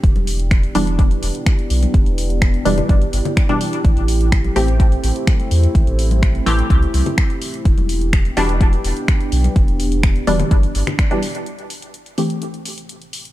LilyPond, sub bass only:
\new Staff \with { instrumentName = "Sub bass" } { \clef bass \time 4/4 \key a \minor \tempo 4 = 126 e,,16 e,,4 r16 e,,8. r16 e,,16 r8. b,,16 r16 | e,,16 e,,4 r16 e,,16 r16 g,,16 r16 g,,16 r4 r16 | a,,16 a,,4 r16 a,,8. r16 a,,16 r8. e,16 r16 | a,,16 a,,4 r16 a,,16 r16 c,16 r16 c,16 r4 r16 |
e,,16 e,,4 r16 e,,8. r16 e,,16 r8. b,,16 r16 | e,,16 e,,4 r16 e,,16 r16 g,,16 r16 g,,16 r4 r16 | r1 | }